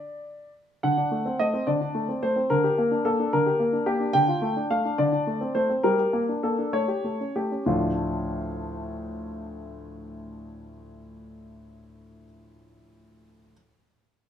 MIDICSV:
0, 0, Header, 1, 2, 480
1, 0, Start_track
1, 0, Key_signature, -1, "minor"
1, 0, Tempo, 566038
1, 708, Time_signature, 6, 3, 24, 8
1, 1657, Tempo, 554529
1, 5017, Tempo, 608519
1, 11687, End_track
2, 0, Start_track
2, 0, Title_t, "Grand piano"
2, 0, Program_c, 0, 0
2, 0, Note_on_c, 0, 74, 70
2, 427, Note_off_c, 0, 74, 0
2, 706, Note_on_c, 0, 78, 67
2, 709, Note_on_c, 0, 50, 50
2, 823, Note_off_c, 0, 50, 0
2, 825, Note_on_c, 0, 62, 36
2, 946, Note_on_c, 0, 57, 36
2, 950, Note_off_c, 0, 62, 0
2, 1065, Note_on_c, 0, 60, 36
2, 1069, Note_off_c, 0, 57, 0
2, 1180, Note_off_c, 0, 78, 0
2, 1183, Note_on_c, 0, 75, 73
2, 1186, Note_on_c, 0, 57, 38
2, 1188, Note_off_c, 0, 60, 0
2, 1301, Note_on_c, 0, 60, 34
2, 1308, Note_off_c, 0, 57, 0
2, 1414, Note_on_c, 0, 74, 61
2, 1417, Note_on_c, 0, 50, 44
2, 1419, Note_off_c, 0, 75, 0
2, 1425, Note_off_c, 0, 60, 0
2, 1533, Note_off_c, 0, 50, 0
2, 1536, Note_on_c, 0, 62, 34
2, 1651, Note_on_c, 0, 57, 33
2, 1662, Note_off_c, 0, 62, 0
2, 1772, Note_on_c, 0, 60, 31
2, 1781, Note_off_c, 0, 57, 0
2, 1893, Note_on_c, 0, 72, 66
2, 1895, Note_on_c, 0, 57, 33
2, 1898, Note_off_c, 0, 74, 0
2, 1902, Note_off_c, 0, 60, 0
2, 2009, Note_on_c, 0, 60, 34
2, 2024, Note_off_c, 0, 57, 0
2, 2129, Note_on_c, 0, 70, 70
2, 2132, Note_on_c, 0, 50, 50
2, 2134, Note_off_c, 0, 60, 0
2, 2137, Note_off_c, 0, 72, 0
2, 2250, Note_on_c, 0, 67, 37
2, 2252, Note_off_c, 0, 50, 0
2, 2374, Note_on_c, 0, 58, 38
2, 2380, Note_off_c, 0, 67, 0
2, 2486, Note_on_c, 0, 62, 39
2, 2501, Note_off_c, 0, 58, 0
2, 2606, Note_on_c, 0, 69, 64
2, 2607, Note_on_c, 0, 58, 39
2, 2610, Note_off_c, 0, 70, 0
2, 2616, Note_off_c, 0, 62, 0
2, 2730, Note_on_c, 0, 62, 40
2, 2734, Note_off_c, 0, 58, 0
2, 2821, Note_off_c, 0, 69, 0
2, 2848, Note_on_c, 0, 70, 70
2, 2852, Note_on_c, 0, 50, 41
2, 2855, Note_off_c, 0, 62, 0
2, 2963, Note_on_c, 0, 67, 36
2, 2964, Note_off_c, 0, 50, 0
2, 3080, Note_on_c, 0, 58, 33
2, 3089, Note_off_c, 0, 67, 0
2, 3193, Note_on_c, 0, 62, 34
2, 3206, Note_off_c, 0, 58, 0
2, 3309, Note_on_c, 0, 67, 64
2, 3313, Note_on_c, 0, 58, 38
2, 3320, Note_off_c, 0, 70, 0
2, 3322, Note_off_c, 0, 62, 0
2, 3429, Note_on_c, 0, 62, 37
2, 3442, Note_off_c, 0, 58, 0
2, 3544, Note_on_c, 0, 79, 91
2, 3550, Note_on_c, 0, 50, 52
2, 3552, Note_off_c, 0, 67, 0
2, 3553, Note_off_c, 0, 62, 0
2, 3669, Note_off_c, 0, 50, 0
2, 3671, Note_on_c, 0, 65, 38
2, 3790, Note_on_c, 0, 57, 42
2, 3799, Note_off_c, 0, 65, 0
2, 3916, Note_on_c, 0, 62, 38
2, 3919, Note_off_c, 0, 57, 0
2, 3994, Note_off_c, 0, 79, 0
2, 4038, Note_on_c, 0, 77, 61
2, 4040, Note_on_c, 0, 57, 37
2, 4042, Note_off_c, 0, 62, 0
2, 4164, Note_off_c, 0, 57, 0
2, 4165, Note_on_c, 0, 62, 37
2, 4278, Note_off_c, 0, 77, 0
2, 4279, Note_on_c, 0, 74, 70
2, 4281, Note_on_c, 0, 50, 54
2, 4282, Note_off_c, 0, 62, 0
2, 4398, Note_off_c, 0, 50, 0
2, 4401, Note_on_c, 0, 62, 35
2, 4528, Note_off_c, 0, 62, 0
2, 4528, Note_on_c, 0, 57, 34
2, 4647, Note_on_c, 0, 60, 33
2, 4654, Note_off_c, 0, 57, 0
2, 4734, Note_off_c, 0, 74, 0
2, 4768, Note_on_c, 0, 72, 62
2, 4772, Note_on_c, 0, 57, 35
2, 4775, Note_off_c, 0, 60, 0
2, 4895, Note_on_c, 0, 60, 28
2, 4900, Note_off_c, 0, 57, 0
2, 4992, Note_off_c, 0, 72, 0
2, 5016, Note_on_c, 0, 70, 67
2, 5019, Note_off_c, 0, 60, 0
2, 5021, Note_on_c, 0, 55, 45
2, 5131, Note_off_c, 0, 55, 0
2, 5139, Note_on_c, 0, 67, 34
2, 5250, Note_on_c, 0, 58, 36
2, 5258, Note_off_c, 0, 67, 0
2, 5297, Note_off_c, 0, 70, 0
2, 5373, Note_off_c, 0, 58, 0
2, 5373, Note_on_c, 0, 62, 34
2, 5488, Note_on_c, 0, 69, 55
2, 5490, Note_on_c, 0, 58, 33
2, 5494, Note_off_c, 0, 62, 0
2, 5607, Note_on_c, 0, 62, 31
2, 5612, Note_off_c, 0, 58, 0
2, 5701, Note_off_c, 0, 69, 0
2, 5724, Note_on_c, 0, 73, 63
2, 5725, Note_off_c, 0, 62, 0
2, 5725, Note_on_c, 0, 57, 42
2, 5841, Note_off_c, 0, 57, 0
2, 5843, Note_on_c, 0, 67, 33
2, 5971, Note_off_c, 0, 67, 0
2, 5971, Note_on_c, 0, 57, 27
2, 6097, Note_off_c, 0, 57, 0
2, 6097, Note_on_c, 0, 61, 26
2, 6213, Note_off_c, 0, 73, 0
2, 6217, Note_on_c, 0, 67, 45
2, 6220, Note_on_c, 0, 57, 29
2, 6224, Note_off_c, 0, 61, 0
2, 6343, Note_on_c, 0, 61, 25
2, 6347, Note_off_c, 0, 57, 0
2, 6437, Note_off_c, 0, 67, 0
2, 6455, Note_on_c, 0, 45, 35
2, 6456, Note_on_c, 0, 38, 39
2, 6459, Note_on_c, 0, 53, 32
2, 6459, Note_on_c, 0, 57, 34
2, 6462, Note_off_c, 0, 61, 0
2, 6462, Note_on_c, 0, 62, 35
2, 6462, Note_on_c, 0, 65, 39
2, 6628, Control_c, 0, 64, 127
2, 10066, Note_off_c, 0, 45, 0
2, 10067, Note_off_c, 0, 38, 0
2, 10070, Note_off_c, 0, 53, 0
2, 10071, Note_off_c, 0, 57, 0
2, 10073, Note_off_c, 0, 62, 0
2, 10074, Note_off_c, 0, 65, 0
2, 11086, Control_c, 0, 64, 0
2, 11687, End_track
0, 0, End_of_file